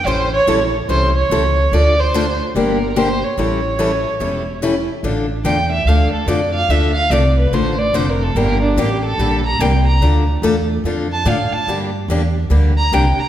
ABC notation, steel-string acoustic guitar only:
X:1
M:4/4
L:1/8
Q:"Swing" 1/4=145
K:Dm
V:1 name="Steel-string acoustic guitar"
[E,G,^CEA] z [E,G,CEA] z [E,G,CEA] z [E,G,CEA] z | [D,A,DFA] z [D,A,DFA] z [D,G,B,DG] z [D,G,B,DG] z | [E,G,^CEA] z [E,G,CEA] z [E,G,CEA] z [E,G,CEA] z | [D,A,DFA] z [D,A,DFA] z [D,A,DFA] z [D,A,DFA] z |
[D,A,DFA] z [D,A,DFA] z [D,A,DFA] z [D,A,DFA] z | [D,G,B,DG] z [D,G,B,DG] z [D,G,B,DG] z [D,G,B,DG] z | [D,A,DFA] z [D,A,DFA] z [D,A,DFA] z [D,A,DFA] z | [D,G,B,DG] z [D,G,B,DG] z [D,G,B,DG] z [D,G,B,DG] z |]